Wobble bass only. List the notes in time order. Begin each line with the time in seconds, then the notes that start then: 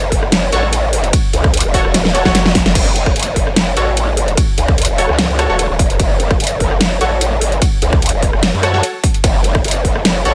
Already playing: F#1
0.52 A1
1.33 C#2
1.65 E1
1.85 E1
2.25 E1
2.35 F#1
2.66 F#1
2.75 F#1
3.16 F#1
3.77 A1
4.58 C#2
4.89 E1
5.09 C#2
5.29 C#2
5.50 E1
5.70 E1
6.00 F#1
6.40 F#1
7.01 A1
7.43 G#1
7.82 C#2
8.13 E1
8.33 F#1
8.54 F#2
9.24 F#1
9.65 F#1
10.25 A1